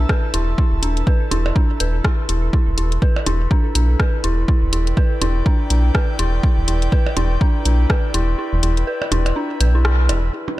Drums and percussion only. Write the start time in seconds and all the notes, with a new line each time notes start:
0.09 kick, cross-stick
0.34 closed hi-hat
0.58 kick
0.83 closed hi-hat
0.97 closed hi-hat
1.07 kick
1.31 closed hi-hat, percussion blips
1.46 percussion blips
1.56 kick
1.80 closed hi-hat
2.04 kick, cross-stick
2.29 closed hi-hat
2.53 kick
2.78 closed hi-hat
2.92 closed hi-hat
3.02 kick
3.16 percussion blips
3.26 closed hi-hat, percussion blips
3.51 kick
3.75 closed hi-hat
4.00 kick, cross-stick
4.24 closed hi-hat
4.48 kick
4.73 closed hi-hat
4.87 closed hi-hat
4.97 kick
5.22 closed hi-hat, percussion blips
5.46 kick
5.70 closed hi-hat
5.95 kick, cross-stick
6.19 closed hi-hat
6.43 kick
6.68 closed hi-hat
6.82 closed hi-hat
6.92 kick
7.06 percussion blips
7.17 closed hi-hat, percussion blips
7.41 kick
7.65 closed hi-hat
7.90 kick, cross-stick
8.14 closed hi-hat
8.63 closed hi-hat
8.77 closed hi-hat
9.02 percussion blips
9.12 closed hi-hat, percussion blips
9.26 closed hi-hat, percussion blips
9.61 closed hi-hat
9.85 cross-stick
10.09 closed hi-hat, percussion blips
10.48 percussion blips